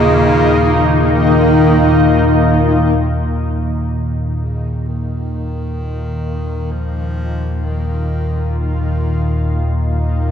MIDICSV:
0, 0, Header, 1, 5, 480
1, 0, Start_track
1, 0, Tempo, 937500
1, 1527, Time_signature, 4, 2, 24, 8
1, 5280, End_track
2, 0, Start_track
2, 0, Title_t, "Ambient pad"
2, 0, Program_c, 0, 92
2, 0, Note_on_c, 0, 51, 78
2, 0, Note_on_c, 0, 58, 65
2, 0, Note_on_c, 0, 63, 75
2, 0, Note_on_c, 0, 65, 65
2, 1514, Note_off_c, 0, 51, 0
2, 1520, Note_on_c, 0, 51, 78
2, 1532, Note_off_c, 0, 58, 0
2, 1538, Note_off_c, 0, 63, 0
2, 1538, Note_off_c, 0, 65, 0
2, 1853, Note_on_c, 0, 58, 65
2, 2064, Note_on_c, 0, 65, 66
2, 3321, Note_on_c, 0, 63, 83
2, 5280, Note_off_c, 0, 51, 0
2, 5280, Note_off_c, 0, 58, 0
2, 5280, Note_off_c, 0, 63, 0
2, 5280, Note_off_c, 0, 65, 0
2, 5280, End_track
3, 0, Start_track
3, 0, Title_t, "Singing bowl"
3, 0, Program_c, 1, 14
3, 0, Note_on_c, 1, 58, 61
3, 1539, Note_off_c, 1, 58, 0
3, 5280, End_track
4, 0, Start_track
4, 0, Title_t, "Bass clarinet"
4, 0, Program_c, 2, 71
4, 0, Note_on_c, 2, 49, 100
4, 546, Note_off_c, 2, 49, 0
4, 577, Note_on_c, 2, 51, 88
4, 1272, Note_off_c, 2, 51, 0
4, 2256, Note_on_c, 2, 49, 73
4, 2475, Note_off_c, 2, 49, 0
4, 2498, Note_on_c, 2, 51, 93
4, 3438, Note_on_c, 2, 53, 104
4, 3446, Note_off_c, 2, 51, 0
4, 3915, Note_on_c, 2, 51, 91
4, 3923, Note_off_c, 2, 53, 0
4, 4398, Note_off_c, 2, 51, 0
4, 4401, Note_on_c, 2, 51, 92
4, 5104, Note_off_c, 2, 51, 0
4, 5280, End_track
5, 0, Start_track
5, 0, Title_t, "Synth drone"
5, 0, Program_c, 3, 95
5, 0, Note_on_c, 3, 39, 75
5, 0, Note_on_c, 3, 46, 72
5, 1521, Note_off_c, 3, 39, 0
5, 1522, Note_off_c, 3, 46, 0
5, 1528, Note_on_c, 3, 39, 75
5, 1528, Note_on_c, 3, 46, 74
5, 5280, Note_off_c, 3, 39, 0
5, 5280, Note_off_c, 3, 46, 0
5, 5280, End_track
0, 0, End_of_file